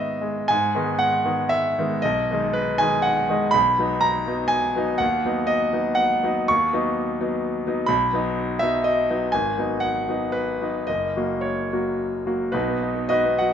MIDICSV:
0, 0, Header, 1, 2, 480
1, 0, Start_track
1, 0, Key_signature, 5, "minor"
1, 0, Tempo, 600000
1, 402, Time_signature, 3, 2, 24, 8
1, 402, Tempo, 507185
1, 2802, Tempo, 491803
1, 6162, Key_signature, 5, "major"
1, 6162, Tempo, 473186
1, 8562, Tempo, 493827
1, 10002, Tempo, 554529
1, 11922, Tempo, 583090
1, 12732, End_track
2, 0, Start_track
2, 0, Title_t, "Grand piano"
2, 0, Program_c, 0, 0
2, 0, Control_c, 0, 64, 127
2, 0, Note_on_c, 0, 44, 47
2, 0, Note_on_c, 0, 51, 40
2, 0, Note_on_c, 0, 56, 42
2, 0, Note_on_c, 0, 59, 42
2, 0, Note_on_c, 0, 63, 49
2, 0, Note_on_c, 0, 68, 71
2, 0, Note_on_c, 0, 75, 69
2, 0, Note_on_c, 0, 76, 75
2, 172, Note_off_c, 0, 56, 0
2, 172, Note_on_c, 0, 56, 44
2, 317, Note_off_c, 0, 59, 0
2, 368, Note_off_c, 0, 44, 0
2, 384, Note_on_c, 0, 80, 93
2, 391, Note_off_c, 0, 75, 0
2, 402, Note_off_c, 0, 56, 0
2, 403, Note_on_c, 0, 44, 58
2, 417, Control_c, 0, 64, 0
2, 421, Note_off_c, 0, 68, 0
2, 423, Note_off_c, 0, 76, 0
2, 426, Note_off_c, 0, 51, 0
2, 427, Note_off_c, 0, 63, 0
2, 572, Control_c, 0, 64, 127
2, 635, Note_on_c, 0, 51, 51
2, 638, Note_off_c, 0, 44, 0
2, 640, Note_on_c, 0, 56, 51
2, 641, Note_on_c, 0, 59, 54
2, 860, Note_on_c, 0, 78, 97
2, 874, Note_off_c, 0, 80, 0
2, 1079, Note_off_c, 0, 51, 0
2, 1082, Note_off_c, 0, 56, 0
2, 1082, Note_off_c, 0, 59, 0
2, 1111, Note_on_c, 0, 51, 45
2, 1114, Note_on_c, 0, 56, 47
2, 1116, Note_on_c, 0, 59, 49
2, 1340, Note_on_c, 0, 76, 96
2, 1349, Note_off_c, 0, 78, 0
2, 1559, Note_off_c, 0, 51, 0
2, 1561, Note_off_c, 0, 56, 0
2, 1562, Note_off_c, 0, 59, 0
2, 1615, Note_on_c, 0, 51, 50
2, 1617, Note_on_c, 0, 59, 49
2, 1619, Note_on_c, 0, 56, 46
2, 1828, Note_off_c, 0, 51, 0
2, 1829, Note_off_c, 0, 59, 0
2, 1830, Note_off_c, 0, 56, 0
2, 1834, Note_off_c, 0, 76, 0
2, 1837, Note_on_c, 0, 75, 86
2, 1863, Control_c, 0, 64, 0
2, 1866, Note_on_c, 0, 35, 58
2, 1976, Control_c, 0, 64, 127
2, 2091, Note_off_c, 0, 35, 0
2, 2111, Note_on_c, 0, 51, 46
2, 2118, Note_on_c, 0, 56, 50
2, 2121, Note_on_c, 0, 63, 54
2, 2324, Note_off_c, 0, 75, 0
2, 2325, Note_on_c, 0, 71, 82
2, 2540, Note_off_c, 0, 51, 0
2, 2543, Note_off_c, 0, 56, 0
2, 2545, Note_off_c, 0, 63, 0
2, 2560, Note_on_c, 0, 80, 94
2, 2564, Note_off_c, 0, 71, 0
2, 2575, Note_on_c, 0, 51, 50
2, 2583, Note_on_c, 0, 56, 48
2, 2591, Note_on_c, 0, 63, 51
2, 2787, Note_on_c, 0, 78, 92
2, 2799, Note_off_c, 0, 80, 0
2, 3010, Note_off_c, 0, 51, 0
2, 3014, Note_off_c, 0, 56, 0
2, 3018, Note_off_c, 0, 63, 0
2, 3048, Note_on_c, 0, 51, 49
2, 3058, Note_on_c, 0, 56, 51
2, 3061, Note_on_c, 0, 63, 55
2, 3261, Note_on_c, 0, 83, 96
2, 3263, Note_off_c, 0, 51, 0
2, 3269, Note_off_c, 0, 56, 0
2, 3270, Note_off_c, 0, 63, 0
2, 3277, Note_off_c, 0, 78, 0
2, 3289, Note_on_c, 0, 35, 61
2, 3302, Control_c, 0, 64, 0
2, 3470, Control_c, 0, 64, 127
2, 3522, Note_off_c, 0, 35, 0
2, 3532, Note_on_c, 0, 54, 50
2, 3536, Note_on_c, 0, 59, 52
2, 3540, Note_on_c, 0, 63, 52
2, 3747, Note_on_c, 0, 82, 101
2, 3754, Note_off_c, 0, 83, 0
2, 3965, Note_off_c, 0, 54, 0
2, 3967, Note_off_c, 0, 59, 0
2, 3969, Note_off_c, 0, 63, 0
2, 4008, Note_on_c, 0, 54, 46
2, 4011, Note_on_c, 0, 59, 51
2, 4012, Note_on_c, 0, 63, 48
2, 4206, Note_on_c, 0, 80, 91
2, 4228, Note_off_c, 0, 82, 0
2, 4442, Note_off_c, 0, 54, 0
2, 4444, Note_off_c, 0, 59, 0
2, 4444, Note_off_c, 0, 63, 0
2, 4484, Note_on_c, 0, 59, 49
2, 4486, Note_on_c, 0, 54, 48
2, 4496, Note_on_c, 0, 63, 59
2, 4696, Note_on_c, 0, 78, 91
2, 4699, Note_off_c, 0, 59, 0
2, 4700, Note_off_c, 0, 54, 0
2, 4704, Note_off_c, 0, 80, 0
2, 4706, Note_off_c, 0, 63, 0
2, 4717, Note_on_c, 0, 39, 63
2, 4733, Control_c, 0, 64, 0
2, 4883, Control_c, 0, 64, 127
2, 4951, Note_off_c, 0, 39, 0
2, 4959, Note_on_c, 0, 54, 49
2, 4970, Note_on_c, 0, 59, 50
2, 4972, Note_on_c, 0, 63, 55
2, 5172, Note_on_c, 0, 75, 87
2, 5183, Note_off_c, 0, 78, 0
2, 5390, Note_off_c, 0, 54, 0
2, 5395, Note_off_c, 0, 59, 0
2, 5396, Note_off_c, 0, 63, 0
2, 5418, Note_off_c, 0, 75, 0
2, 5425, Note_on_c, 0, 54, 51
2, 5431, Note_on_c, 0, 59, 47
2, 5435, Note_on_c, 0, 63, 47
2, 5643, Note_on_c, 0, 78, 95
2, 5873, Note_off_c, 0, 54, 0
2, 5876, Note_off_c, 0, 59, 0
2, 5878, Note_off_c, 0, 63, 0
2, 5920, Note_on_c, 0, 54, 51
2, 5922, Note_on_c, 0, 59, 54
2, 5930, Note_on_c, 0, 63, 57
2, 6140, Note_off_c, 0, 54, 0
2, 6142, Note_off_c, 0, 59, 0
2, 6146, Note_off_c, 0, 63, 0
2, 6150, Note_off_c, 0, 78, 0
2, 6164, Note_on_c, 0, 85, 96
2, 6179, Control_c, 0, 64, 0
2, 6187, Note_on_c, 0, 39, 64
2, 6323, Control_c, 0, 64, 127
2, 6413, Note_off_c, 0, 39, 0
2, 6416, Note_on_c, 0, 54, 54
2, 6417, Note_on_c, 0, 59, 53
2, 6421, Note_on_c, 0, 63, 55
2, 6850, Note_off_c, 0, 54, 0
2, 6851, Note_off_c, 0, 59, 0
2, 6853, Note_off_c, 0, 63, 0
2, 6898, Note_on_c, 0, 54, 48
2, 6898, Note_on_c, 0, 59, 47
2, 6899, Note_on_c, 0, 63, 50
2, 7326, Note_off_c, 0, 54, 0
2, 7326, Note_off_c, 0, 59, 0
2, 7327, Note_off_c, 0, 63, 0
2, 7367, Note_on_c, 0, 54, 54
2, 7367, Note_on_c, 0, 59, 50
2, 7373, Note_on_c, 0, 63, 50
2, 7565, Note_on_c, 0, 83, 83
2, 7577, Note_off_c, 0, 54, 0
2, 7577, Note_off_c, 0, 59, 0
2, 7580, Note_off_c, 0, 63, 0
2, 7585, Note_on_c, 0, 35, 66
2, 7598, Note_off_c, 0, 85, 0
2, 7613, Control_c, 0, 64, 0
2, 7771, Control_c, 0, 64, 127
2, 7822, Note_off_c, 0, 35, 0
2, 7837, Note_on_c, 0, 54, 54
2, 7838, Note_on_c, 0, 59, 50
2, 7851, Note_on_c, 0, 63, 55
2, 8279, Note_off_c, 0, 54, 0
2, 8279, Note_off_c, 0, 59, 0
2, 8285, Note_off_c, 0, 63, 0
2, 8302, Note_off_c, 0, 83, 0
2, 8305, Note_on_c, 0, 76, 88
2, 8332, Note_on_c, 0, 54, 44
2, 8336, Note_on_c, 0, 59, 43
2, 8338, Note_on_c, 0, 63, 54
2, 8554, Note_off_c, 0, 76, 0
2, 8556, Note_on_c, 0, 75, 75
2, 8762, Note_off_c, 0, 54, 0
2, 8763, Note_off_c, 0, 59, 0
2, 8764, Note_off_c, 0, 63, 0
2, 8810, Note_on_c, 0, 59, 46
2, 8811, Note_on_c, 0, 54, 48
2, 8814, Note_on_c, 0, 63, 53
2, 9014, Note_off_c, 0, 59, 0
2, 9015, Note_off_c, 0, 54, 0
2, 9016, Note_off_c, 0, 63, 0
2, 9021, Note_on_c, 0, 80, 80
2, 9026, Note_off_c, 0, 75, 0
2, 9040, Note_on_c, 0, 32, 59
2, 9045, Control_c, 0, 64, 0
2, 9174, Control_c, 0, 64, 127
2, 9265, Note_off_c, 0, 32, 0
2, 9274, Note_on_c, 0, 59, 46
2, 9275, Note_on_c, 0, 54, 46
2, 9282, Note_on_c, 0, 63, 48
2, 9490, Note_on_c, 0, 78, 82
2, 9503, Note_off_c, 0, 80, 0
2, 9715, Note_off_c, 0, 54, 0
2, 9715, Note_off_c, 0, 59, 0
2, 9719, Note_off_c, 0, 63, 0
2, 9767, Note_on_c, 0, 54, 43
2, 9770, Note_on_c, 0, 59, 41
2, 9781, Note_on_c, 0, 63, 48
2, 9992, Note_off_c, 0, 78, 0
2, 9996, Note_on_c, 0, 71, 73
2, 10205, Note_off_c, 0, 54, 0
2, 10206, Note_off_c, 0, 59, 0
2, 10212, Note_off_c, 0, 63, 0
2, 10250, Note_on_c, 0, 54, 38
2, 10252, Note_on_c, 0, 59, 42
2, 10258, Note_on_c, 0, 63, 46
2, 10459, Note_off_c, 0, 54, 0
2, 10460, Note_off_c, 0, 59, 0
2, 10463, Note_off_c, 0, 63, 0
2, 10469, Note_on_c, 0, 75, 76
2, 10471, Note_off_c, 0, 71, 0
2, 10485, Note_on_c, 0, 30, 50
2, 10487, Control_c, 0, 64, 0
2, 10626, Control_c, 0, 64, 127
2, 10716, Note_off_c, 0, 30, 0
2, 10726, Note_on_c, 0, 54, 38
2, 10732, Note_on_c, 0, 66, 42
2, 10736, Note_on_c, 0, 58, 40
2, 10940, Note_on_c, 0, 73, 57
2, 10956, Note_off_c, 0, 75, 0
2, 11168, Note_off_c, 0, 54, 0
2, 11171, Note_off_c, 0, 66, 0
2, 11173, Note_off_c, 0, 58, 0
2, 11214, Note_on_c, 0, 58, 38
2, 11216, Note_on_c, 0, 54, 38
2, 11216, Note_on_c, 0, 66, 39
2, 11427, Note_off_c, 0, 73, 0
2, 11648, Note_off_c, 0, 58, 0
2, 11649, Note_off_c, 0, 54, 0
2, 11649, Note_off_c, 0, 66, 0
2, 11674, Note_on_c, 0, 54, 38
2, 11681, Note_on_c, 0, 66, 39
2, 11682, Note_on_c, 0, 58, 38
2, 11892, Note_off_c, 0, 66, 0
2, 11896, Note_off_c, 0, 54, 0
2, 11899, Note_on_c, 0, 71, 66
2, 11900, Note_off_c, 0, 58, 0
2, 11905, Note_on_c, 0, 66, 56
2, 11907, Note_on_c, 0, 63, 58
2, 11917, Note_on_c, 0, 35, 54
2, 11934, Control_c, 0, 64, 0
2, 12031, Note_on_c, 0, 59, 50
2, 12078, Control_c, 0, 64, 127
2, 12136, Note_off_c, 0, 63, 0
2, 12148, Note_on_c, 0, 63, 43
2, 12229, Note_off_c, 0, 59, 0
2, 12256, Note_on_c, 0, 59, 48
2, 12347, Note_off_c, 0, 63, 0
2, 12361, Note_off_c, 0, 66, 0
2, 12367, Note_on_c, 0, 75, 83
2, 12368, Note_off_c, 0, 71, 0
2, 12376, Note_on_c, 0, 66, 63
2, 12380, Note_on_c, 0, 71, 62
2, 12387, Note_on_c, 0, 63, 53
2, 12460, Note_off_c, 0, 59, 0
2, 12505, Note_on_c, 0, 59, 42
2, 12586, Note_off_c, 0, 63, 0
2, 12610, Note_off_c, 0, 66, 0
2, 12612, Note_on_c, 0, 78, 77
2, 12613, Note_off_c, 0, 71, 0
2, 12624, Note_off_c, 0, 75, 0
2, 12632, Note_on_c, 0, 54, 43
2, 12705, Note_off_c, 0, 59, 0
2, 12732, Note_off_c, 0, 35, 0
2, 12732, Note_off_c, 0, 54, 0
2, 12732, Note_off_c, 0, 78, 0
2, 12732, End_track
0, 0, End_of_file